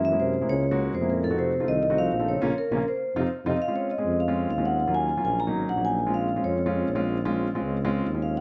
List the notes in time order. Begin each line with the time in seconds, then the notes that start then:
Already playing: F#2
0.05 E3 E5
0.12 G#3 A#3 C#4 E4
0.19 C3 C5
0.41 G#3 A#3 C#4 E4
0.48 C#2 C#3 C#5
0.71 G#3 A#3 C#4 F#4
0.93 F2 C3 C5
1.01 G#3 A#3 C#4 E4
1.09 A#2 A#4
1.24 A2 A4
1.30 A3 C4 D#4 F#4
1.38 C3 C5
1.60 A3 C4 D#4 F4
1.67 C2 D#3 D#5
1.83 D#3 D#5
1.90 A3 C4 D#4 F#4
1.98 F3 F5
2.12 A#1
2.19 A3 C4 D#4 A4
2.29 C#3 C#5
2.41 A#1 C#3 A#3 C#4 F4
2.58 A#4
2.71 A#1 C#3 A#3 C#4 F4
2.88 C5
3.16 F2 C3 C4 D#4 F4
3.46 F2 C3 C4 D#4 F4 D#5
3.62 F5
3.68 G#3 C4 C#4 F4
3.76 C#5
3.91 D#5
3.98 G#3 C4 C#4 G#4
4.05 F2
4.20 F5
4.28 G#3 C4 C#4 F4
4.50 D#2 F5
4.58 G#3 C4 C#4 F4
4.65 F#5
4.87 F#3 A#3 C#4 F4
4.95 G#5
5.17 F#3 A#3 C#4 F4
5.24 A#1 G#5
5.40 A#5
5.47 F#3 A#3 C#4 D#4
5.54 G#1
5.69 A#1 F#5
5.77 F#3 A#3 C#4 D#4
5.85 G#5
6.06 G#3 C4 C#4 F4
6.14 F5
6.36 G#3 C4 C#4 F4
6.43 F2 C#5
6.66 G#3 C4 C#4 F4
6.88 A#1
6.95 G#3 C4 C#4 F4
7.25 G#3 C4 C#4 F4
7.55 G#3 C4 C#4 F4
7.62 C#2
7.84 G#3 C4 C#4 F4
8.06 D#2
8.14 G#3 C4 C#4 F4
8.22 F5
8.37 F#5